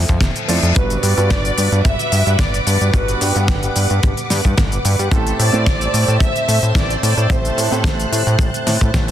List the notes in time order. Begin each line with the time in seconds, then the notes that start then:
Already playing: F3 A3 C4 E4 A4, reverse cymbal
0.08 F2, kick, closed hi-hat, shaker
0.21 F1, kick, snare, closed hi-hat, shaker
0.36 closed hi-hat, shaker
0.48 F2 F3 A3 C4 E4 D5, open hi-hat, shaker
0.63 F2, closed hi-hat, shaker
0.75 G1 G3 B3 D4 F#4 B4 F#5 D6, kick, closed hi-hat, shaker
0.90 closed hi-hat, shaker
1.03 G2 D5, open hi-hat, shaker
1.16 G2 G3 B3 D4 F#4 B4, closed hi-hat, shaker
1.30 G1, kick, snare, closed hi-hat, shaker
1.45 closed hi-hat, shaker
1.58 G2, open hi-hat, shaker
1.72 G2, closed hi-hat, shaker
1.85 G1 E5, kick, closed hi-hat, shaker
1.99 closed hi-hat, shaker
2.12 G2, open hi-hat, shaker
2.27 G2, closed hi-hat, shaker
2.39 G1 D5, kick, snare, closed hi-hat, shaker
2.54 closed hi-hat, shaker
2.67 G2 D5, open hi-hat, shaker
2.81 G2, closed hi-hat, shaker
2.93 G1 G3 B3 D4 F#4 B4, kick, closed hi-hat, shaker
3.08 closed hi-hat, shaker
3.21 G2 G4, open hi-hat, shaker
3.34 G2 G3 B3 D4 B4 F#5, closed hi-hat, shaker
3.48 G1, kick, snare, closed hi-hat, shaker
3.63 closed hi-hat, shaker
3.76 G2, open hi-hat, shaker
3.90 G2, closed hi-hat, shaker
4.03 G1, kick, closed hi-hat, shaker
4.17 closed hi-hat, shaker
4.30 G2, snare, open hi-hat, shaker
4.45 G2, kick, closed hi-hat, shaker
4.58 G1, kick, snare, closed hi-hat, shaker
4.72 closed hi-hat, shaker
4.85 G2, open hi-hat, shaker
4.99 G2, closed hi-hat, shaker
5.11 A1 A3 C4 E4 G4 A4 C5 A5 E6, kick, closed hi-hat, shaker
5.27 closed hi-hat, shaker
5.39 A2 D5, open hi-hat, shaker
5.53 A2 A3 C4 E4 G4 C5, closed hi-hat, shaker
5.66 A1, kick, snare, closed hi-hat, shaker
5.81 closed hi-hat, shaker
5.94 A2, open hi-hat, shaker
6.08 A2, closed hi-hat, shaker
6.20 A1 E5, kick, closed hi-hat, shaker
6.36 closed hi-hat, shaker
6.48 A2, open hi-hat, shaker
6.63 A2, closed hi-hat, shaker
6.75 A1 D5, kick, snare, closed hi-hat, shaker
6.90 closed hi-hat, shaker
7.03 A2 D5, open hi-hat, shaker
7.17 A2, closed hi-hat, shaker
7.30 A1 A3 C4 E4 G4 C5 F#6, kick, closed hi-hat, shaker
7.45 closed hi-hat, shaker
7.57 A2 A4, open hi-hat, shaker
7.71 A2 A3 C4 E4 G4 C5, closed hi-hat, shaker
7.84 A1, kick, snare, closed hi-hat, shaker
8.00 closed hi-hat, shaker
8.12 A2, open hi-hat, shaker
8.27 A2, closed hi-hat, shaker
8.39 A1, kick, closed hi-hat, shaker
8.54 closed hi-hat, shaker
8.67 A2, snare, open hi-hat, shaker
8.81 A2, kick, shaker
8.94 A1, kick, snare, closed hi-hat, shaker